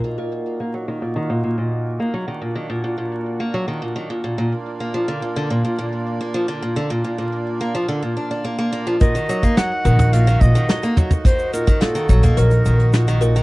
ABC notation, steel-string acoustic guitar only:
X:1
M:4/4
L:1/16
Q:1/4=107
K:Eblyd
V:1 name="Steel-string acoustic guitar" clef=bass
B,, B,,3 B, _G, E, B,, E, B,, B,, B,,3 B, G, | E, B,, E, B,, B,, B,,3 B, _G, E, B,, E, B,, B,, B,, | z2 B, F, D, B,, D, B,, B,, B,,3 B, F, D, B,, | D, B,, B,, B,,3 B, F, D, B,, D D B, B, B, F, |
B,, E, _G, B, G, z E,2 B,, E, B,, E, G, B, G, z | E,2 B,, E, B,, E, _G, B, G, z E,2 B,, E, B,, E, |]